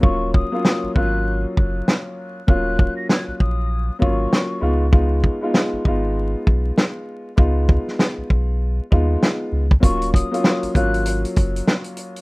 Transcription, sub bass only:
X:1
M:4/4
L:1/16
Q:"Swing 16ths" 1/4=98
K:Ebm
V:1 name="Sub bass" clef=bass
E,,,3 z2 A,,, A,,,4 G,,,2 z4 | E,,,3 z2 B,,, B,,,4 A,,,2 z2 D,,2- | D,,3 z2 A,,, A,,,4 C,,2 z4 | D,,3 z2 C,, C,,4 E,,2 z2 D,,2 |
E,,,3 z2 A,,, A,,,4 G,,,2 z4 |]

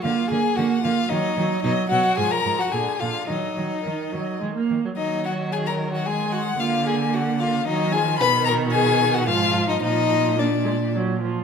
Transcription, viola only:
X:1
M:3/4
L:1/16
Q:1/4=111
K:Ebm
V:1 name="Viola" clef=bass
B,2 B,2 B,2 B,2 G,2 G,2 | ^F,2 F,2 =F,2 F,2 =D,2 D,2 | G,2 G,2 E,2 G,2 A, B,2 G, | G,8 A,4 |
B,8 G,2 F,2 | ^D,8 F,4 | F,4 B,2 A,2 G,2 F,2 |]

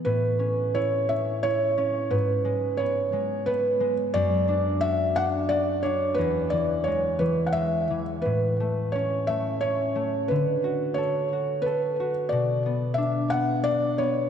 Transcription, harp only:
X:1
M:3/4
L:1/8
Q:1/4=88
K:A
V:1 name="Harp"
A,, C E C E C | G,, G, B, G, B, G, | F,, D F D F D | E,, E, G, E, G, E, |
A,, A, C A, C A, | D, F A F A F | B,, B, D B, D B, |]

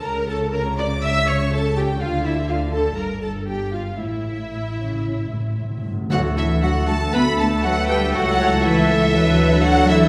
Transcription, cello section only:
X:1
M:4/4
L:1/8
Q:1/4=119
K:Aphr
V:1 name="Cello section" clef=bass
_D,8 | D,4 G,,4 | A,,2 A,, ^C, C, A,, A,, G,, | [K:D] F, E, F, A, B, A, F, G, |
F,2 E,4 F, E, |]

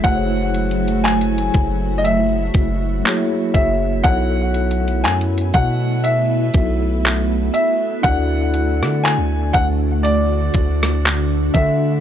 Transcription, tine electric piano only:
X:1
M:4/4
L:1/8
Q:"Swing 16ths" 1/4=60
K:F#m
V:1 name="Tine electric piano"
[A,EFG^Bc]6 [^A,EFGc]2 | [B,EFAc]4- [B,EFAc] [B,EFAe]3 | [DEFAd]8 |]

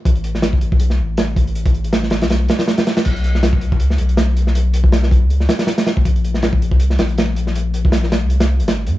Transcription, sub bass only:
X:1
M:4/4
L:1/16
Q:"Swing 16ths" 1/4=160
K:A
V:1 name="Sub bass" clef=bass
A,,,6- A,,, B,,,3 A,,,6- | A,,,6- A,,, B,,,3 z6 | B,,,6- B,,, C,,3 B,,,6- | B,,,6- B,,, C,,3 z6 |
^A,,,6- A,,, ^B,,,3 A,,,6- | ^A,,,6- A,,, ^B,,,4 G,,,3 =G,,2 |]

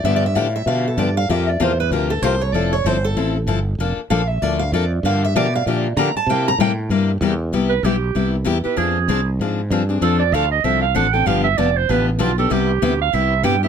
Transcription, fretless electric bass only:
X:1
M:4/4
L:1/8
Q:"Swing" 1/4=192
K:Cmix
V:1 name="Fretless electric bass" clef=bass
G,,2 A,,2 =B,,2 G,,2 | F,,2 E,,2 D,,2 C,,2 | F,,,2 G,,,2 A,,,2 G,,,2 | F,,, z B,,,2 D,,2 F,,2 |
G,,2 =B,,2 _B,,2 D, z | C,2 A,,2 G,,2 E,,2 | [K:C] C,,2 B,,,2 C,,2 E,, z | F,,2 C,,2 _A,,2 G,,2 |
F,,2 D,,2 C,,2 A,,,2 | G,,,2 F,,,2 A,,,2 B,,,2 | C,,2 D,,2 C,,2 G,,2 |]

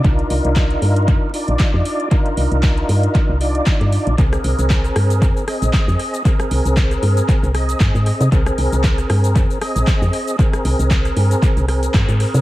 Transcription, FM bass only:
X:1
M:4/4
L:1/16
Q:"Swing 16ths" 1/4=116
K:Ablyd
V:1 name="FM bass" clef=bass
C,, z C,, C,,2 z G,,2 F,, z2 B,,, z F,, z2 | z2 C,, C,,2 z G,, z2 C,,2 z2 G,, z B,,, | C,, z C,, C,,2 z G,,2 F,, z2 B,,, z F,, z2 | z2 C,, C,,2 z G,, z2 C,,2 z G,, A,, z C, |
C,, z C,, C,,2 z G,,2 F,, z2 B,,, z F,, z2 | z2 C,, C,,2 z G,, z2 C,,2 z G,, A,, z C, |]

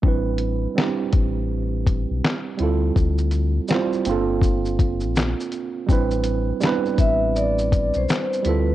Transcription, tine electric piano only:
X:1
M:4/4
L:1/8
Q:"Swing 16ths" 1/4=82
K:Am
V:1 name="Tine electric piano"
[G,CDEB]2 [G,CDEG]3 z2 [G,CEFA]- | [G,CEFA] z [G,CEFc] [_B,CDFA]3 z2 | [G,CDEB]2 [G,B,CDEB]3 z2 [G,CEFA] |]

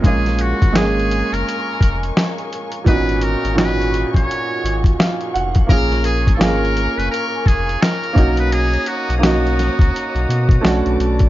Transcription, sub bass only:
X:1
M:4/4
L:1/16
Q:"Swing 16ths" 1/4=85
K:Bbphr
V:1 name="Sub bass" clef=bass
B,,,3 A,,,4 G,,, z2 F,,,2 z4 | A,,,3 A,,,4 B,,, z2 A,,,2 z2 F,,,2 | B,,,3 A,,,4 G,,, z2 F,,,2 z2 =B,,,2- | =B,,,2 z B,,,4 ^C,, z B,,, =B,,2 B,,, B,,, B,,,2 |]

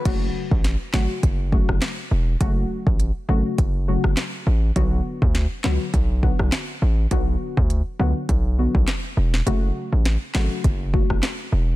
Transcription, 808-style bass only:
X:1
M:4/4
L:1/16
Q:"Swing 16ths" 1/4=102
K:F#m
V:1 name="808-style bass" clef=bass
F,,,2 z A,,,2 z G,,, z F,,,3 F,,, z2 E,,,2 | F,,,2 z A,,,2 z G,,, z F,,,3 F,,, z2 A,,,2 | B,,,2 z D,,2 z C,, z B,,,3 B,,, z2 A,,,2 | B,,,2 z D,,2 z C,, z B,,,3 B,,, z2 E,,,2 |
F,,,2 z A,,,2 z G,,, z F,,,3 F,,, z2 E,,,2 |]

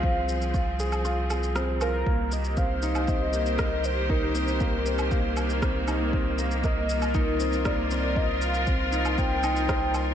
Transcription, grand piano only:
X:1
M:4/4
L:1/8
Q:1/4=118
K:Cm
V:1 name="Grand piano"
C z F A F A C F | B, z C E C B, B z | E C B, C B, z C E | C B, B z E C B, C |
B, z C E C E c z |]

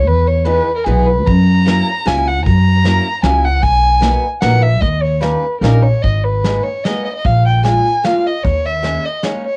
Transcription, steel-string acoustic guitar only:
X:1
M:3/4
L:1/8
Q:"Swing" 1/4=150
K:D#phr
V:1 name="Steel-string acoustic guitar"
z2 [E,G,B,D] z [E,G,B,D] z | z2 [F,A,CE] z [F,A,CE] z | z2 [F,A,CE] z [F,A,CE] z | z2 [F,A,B,D] z [F,A,B,D] z |
z2 [=G,A,CD] z [G,A,CD] z | [K:G#m] z2 [G,A,B,D] z [G,A,B,D] z | z2 [G,A,=D^E] z [G,A,DE] z | z2 [G,A,CD] z [G,A,CD] z |]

